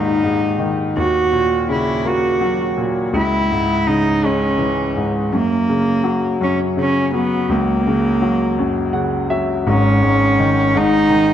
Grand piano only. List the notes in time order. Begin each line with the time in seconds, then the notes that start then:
Already playing: D#2 G#2 A#2 B2 D#3
0.23 G#2
0.59 D#3
0.96 D#2
1.33 A#2
1.69 C#3
2.05 A#3
2.41 F#3
2.77 A#2
3.13 C#2
3.51 G#2
3.87 C#3
4.23 G#3
4.58 E3
4.96 G#2
5.32 F#2
5.69 C#3
6.04 F#3
6.41 F#2
6.77 C#3
7.14 F#3
7.49 C#2
7.87 C#3
8.22 F#3
8.59 F#2
8.93 C#3 F#5
9.30 F#3 E5
9.67 G#1 G#2
10.02 G#2
10.39 D#3
10.74 G#2
11.10 D#3